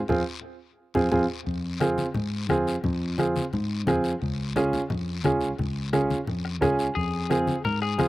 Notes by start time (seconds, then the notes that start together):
0.08 F2 C4 F4 G#4, bombo low, low conga, long guiro
0.94 F2 C4 F4 G#4, bombo low, low conga, long guiro
1.11 F2 C4 F4 G#4, bombo low, low conga, long guiro
1.47 F2, bombo low, long guiro
1.80 C4 F4 G#4, bombo rim, high conga, short guiro
1.98 high conga, short guiro
2.14 G#2, low conga, long guiro
2.49 F2 C4 F4 G#4, bombo low, bombo rim, high conga, short guiro
2.67 short guiro
2.84 F2, bombo low, low conga, long guiro
3.18 C4 F4 G#4, bombo rim, high conga, short guiro
3.36 high conga, short guiro
3.53 G#2, low conga, long guiro
3.87 F2 C4 F4 G#4, bombo low, bombo rim, high conga, low conga, short guiro
4.04 short guiro
4.22 C#2, bombo low, long guiro
4.56 C#4 F4 G#4, bombo rim, high conga, short guiro
4.73 high conga, short guiro
4.90 F2, low conga, long guiro
5.24 C#2 C#4 F4 G#4, bombo low, bombo rim, high conga, short guiro
5.41 short guiro
5.59 C#2, bombo low, low conga, long guiro
5.93 C#4 F4 G#4, bombo rim, high conga, short guiro
6.10 high conga, short guiro
6.27 F2, low conga, long guiro
6.45 bombo rim
6.61 C#2 C#4 F4 G#4 G#5, bombo low, bombo rim, high conga, low conga, short guiro
6.79 short guiro
6.95 F2 G#4, bombo low, long guiro
7.30 C4 F4 G#4, bombo rim, high conga, short guiro
7.47 high conga, short guiro
7.65 G#2 A#4, low conga, long guiro
7.82 G#4, bombo rim
7.98 F2 C4 F4 G#4, bombo low, bombo rim, high conga, short guiro